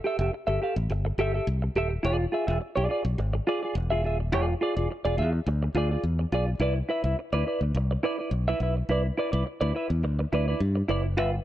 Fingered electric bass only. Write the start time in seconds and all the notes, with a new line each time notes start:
0.19 F1
0.47 G1
0.76 A1
0.90 G1
1.18 G1
1.47 C2
1.75 D#1
2.04 E1
2.48 E1
2.77 B1
3.05 B1
3.18 G#1
3.75 E1
4.04 D#1
4.33 E1
4.77 E1
5.05 E1
5.18 E2
5.47 D2
5.75 D2
6.03 E2
6.32 B1
6.60 C2
7.04 C2
7.33 D2
7.61 D2
7.75 C2
8.31 B1
8.60 B1
8.89 C2
9.33 C2
9.61 D2
9.90 E2
10.03 D2
10.33 D2
10.60 G2
10.89 F#1
11.17 G1